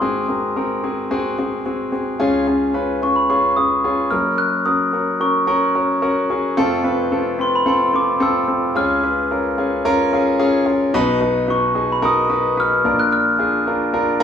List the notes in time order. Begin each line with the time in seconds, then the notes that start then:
Already playing: C6
0.01 G#1 G#2 C4 F#4 G#4
0.29 C4 F#4 A#4
0.56 C4 F#4 A#4
0.83 C4 F#4 G#4
1.11 C4 F#4 G#4
1.39 C4 F#4 G#4
1.66 C4 F#4 G#4
1.92 C4 F#4 G#4
2.20 C#2 C#3 C#4 F4 G#4
2.47 C#4 F4 G#4
2.74 C#4 F4 B4
3.02 C#4 F4 G#4 C#6
3.16 B5
3.29 C#4 F4 G#4 C#6
3.57 C#4 F4 G#4 D#6
3.84 C#4 F4 G#4
4.11 F#1 F#2 C#4 F#4 A#4 F6
4.38 F#6
4.66 C#4 F#4 A#4 D#6
4.93 C#4 F#4 A#4
5.20 C#4 F#4 A#4 C#6
5.47 C#4 F#4 A#4 C#6
5.75 C#4 F#4 A#4
6.02 C#4 F#4 A#4
6.30 C#4 F#4 G#4
6.57 F1 F2 C4 F4 A4
6.84 C4 F4 B4
7.12 C4 F4 A4
7.39 C4 F4 B4 C6
7.56 B5
7.66 C4 F4 A4 C6
7.93 C4 F4 A4 D6
8.20 C4 F4 A4 E6
8.48 C4 F4 A4
8.75 C#2 C#3 C#4 F4 G#4 F6
9.04 C#4 F4 B4
9.31 C#4 F4 A#4
9.58 C#4 F4 G#4
9.85 C#4 F4 A#4
10.13 C#4 F4 G#4
10.39 C#4 F4 G#4 F5
10.66 C#4 F4 G#4 G#5
10.94 B1 B2 D#4 F#4 B4
11.21 D#4 F#4 B4
11.48 D#4 F#4 B4 C#6
11.75 D#4 F#4 G#4
11.92 B5
12.02 D#4 F#4 A#4 D#6
12.29 D#4 F#4 B4
12.57 D#4 F#4 B4 F6
12.84 A#1 A#2 D4 F4 A#4
12.99 F#6
13.12 F6
13.39 D4 F4 G#4
13.67 D4 F4 A#4
13.94 D4 F4 A#4
14.20 D4 F4